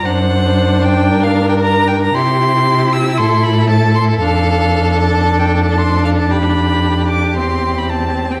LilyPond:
<<
  \new Staff \with { instrumentName = "Violin" } { \time 4/4 \key g \dorian \tempo 4 = 115 fis''4. g''8. f''8 g''16 bes''8 g''16 bes''16 | \key c \major c'''4. e'''8 c'''8 b''8 a''8 c'''8 | f''4. a''8. g''8 a''16 c'''8 f''16 a''16 | b''4. d'''8 c'''8. b''16 a''8. g''16 | }
  \new Staff \with { instrumentName = "Violin" } { \time 4/4 \key g \dorian c''2 bes'2 | \key c \major g'2 a'2~ | a'1 | g'1 | }
  \new Staff \with { instrumentName = "Viola" } { \time 4/4 \key g \dorian d'1 | \key c \major e'1 | d'1~ | d'2 c'2 | }
  \new Staff \with { instrumentName = "Cello" } { \clef bass \time 4/4 \key g \dorian fis,2 g,2 | \key c \major c2 a,2 | f,1~ | f,2 e,2 | }
>>